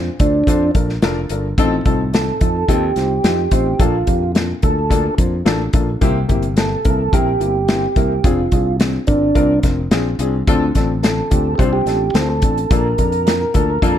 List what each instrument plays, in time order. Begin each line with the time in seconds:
Already playing: upright piano A#2
0.19 fingered electric bass D2, upright piano D4 F4 A4 C5, tonewheel organ D4, kick, closed hi-hat
0.47 fingered electric bass F2, upright piano D4 F4 A4 C5, kick, closed hi-hat
0.75 fingered electric bass A#1, upright piano D4 F4 A4 A#4, kick, closed hi-hat
0.89 snare
1.02 fingered electric bass F1, upright piano D4 F4 A4 A#4, snare, closed hi-hat
1.29 fingered electric bass G1, upright piano D4 F4 A4 A#4, closed hi-hat
1.58 fingered electric bass A1, upright piano A2 C4 D#4 F4 A4, kick, closed hi-hat
1.85 fingered electric bass C2, upright piano C4 D#4 F4 A4, kick, closed hi-hat
2.13 upright piano C4 D#4 F4 A4, tonewheel organ A4, snare, closed hi-hat
2.41 fingered electric bass F2, upright piano C4 D#4 F4 A4, kick, closed hi-hat
2.68 fingered electric bass D#2, upright piano C4 D#4 F4 A4, tonewheel organ G4, kick, closed hi-hat
2.96 fingered electric bass C2, upright piano C4 D#4 F4 C5, snare, closed hi-hat
3.24 fingered electric bass F2, upright piano C4 D#4 F4 G4, snare, closed hi-hat
3.51 fingered electric bass A1, upright piano C4 D#4 F4 C5, kick, closed hi-hat
3.79 fingered electric bass A#1, upright piano A#2 A#3 D4 F4 A4, tonewheel organ F4, kick, closed hi-hat
4.07 fingered electric bass F2, upright piano A#3 D4 F4 G4, kick, closed hi-hat
4.35 upright piano A#3 D4 F4 A4, snare, closed hi-hat
4.62 fingered electric bass D2, upright piano A#3 D4 F4 A4, tonewheel organ A4, kick, closed hi-hat
4.90 upright piano A#3 D4 F4 A4, kick, closed hi-hat
5.18 fingered electric bass F2, upright piano A#3 D4 F4 C5, kick, closed hi-hat
5.45 fingered electric bass A1, upright piano A#3 D4 F4 A4, snare, closed hi-hat
5.73 fingered electric bass A#1, upright piano A#3 D4 F4 A4, kick, closed hi-hat
6.01 fingered electric bass C2, upright piano C3 A#3 C4 E4 G4, kick, closed hi-hat
6.28 fingered electric bass G1, upright piano A#3 C4 E4 G4, kick, closed hi-hat
6.42 closed hi-hat
6.56 upright piano A#3 C4 E4 G4, tonewheel organ A4, snare, closed hi-hat
6.85 fingered electric bass C2, upright piano A#3 C4 E4 A#4, kick, closed hi-hat
7.12 fingered electric bass A#1, upright piano A#3 C4 E4 A#4, tonewheel organ G4, kick, closed hi-hat
7.40 fingered electric bass G1, upright piano A#3 C4 E4 G4, closed hi-hat
7.68 upright piano A#3 C4 E4 G4, snare, closed hi-hat
7.96 fingered electric bass C2, upright piano A#3 C4 E4 A#4, kick, closed hi-hat
8.24 fingered electric bass F1, upright piano C4 D4 F4 G#4, tonewheel organ F4, kick, closed hi-hat
8.52 fingered electric bass C2, upright piano C4 D4 F4 G#4, kick, closed hi-hat
8.79 upright piano C4 D4 F4 G#4, snare, closed hi-hat
9.07 fingered electric bass G#1, upright piano C4 D4 F4 A#4, tonewheel organ D4, kick, closed hi-hat
9.35 fingered electric bass C2, upright piano C4 D4 F4 A#4, kick, closed hi-hat
9.63 fingered electric bass F1, upright piano C4 D4 F4 A#4, kick, snare, closed hi-hat
9.91 fingered electric bass A#1, upright piano C4 D4 F4 G#4, snare, closed hi-hat
10.19 fingered electric bass C2, upright piano C4 D4 F4 G#4, closed hi-hat
10.47 fingered electric bass D2, upright piano D3 C4 D4 F4 A4, kick, closed hi-hat
10.75 fingered electric bass A1, upright piano C4 D4 F4 A4, kick, snare, closed hi-hat
11.03 upright piano C4 D4 F4 A4, tonewheel organ A4, snare, closed hi-hat
11.30 fingered electric bass D2, upright piano C4 D4 F4 G4, kick, closed hi-hat
11.56 fingered electric bass C2, upright piano C4 D4 F4 C5, tonewheel organ G4 A4, kick
11.60 closed hi-hat
11.73 tonewheel organ G4
11.86 fingered electric bass A1, upright piano C4 D4 F4 A4, snare, closed hi-hat
12.14 fingered electric bass D2, upright piano C4 D4 F4 C5, tonewheel organ A4, snare, closed hi-hat
12.30 tonewheel organ A4
12.42 fingered electric bass A1, upright piano C4 D4 F4 A4, kick, closed hi-hat
12.58 closed hi-hat
12.71 fingered electric bass A#1, upright piano A#2 A#3 D4 F4 A4, tonewheel organ A#4, kick, closed hi-hat
12.98 fingered electric bass F2, upright piano A#3 D4 F4 A4, kick, closed hi-hat
13.12 closed hi-hat
13.26 upright piano A#3 D4 F4 A#4, snare, closed hi-hat
13.54 fingered electric bass D2, upright piano A#3 D4 F4 A4, kick, closed hi-hat
13.82 fingered electric bass F2, upright piano A#3 D4 F4 A4, kick, closed hi-hat